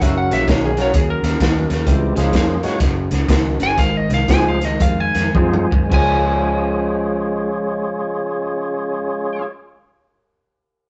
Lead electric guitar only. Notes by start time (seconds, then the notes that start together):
0.02 E5
0.18 F#5
0.33 E5
0.48 C#5
0.65 G#4
0.82 C#5
0.95 G#4
1.10 A#4
3.63 G#5
3.79 F5
3.97 D#5
4.14 F5
4.31 G#5
4.48 F5
4.65 D#5
4.82 F5
5.00 G#5
5.94 G#5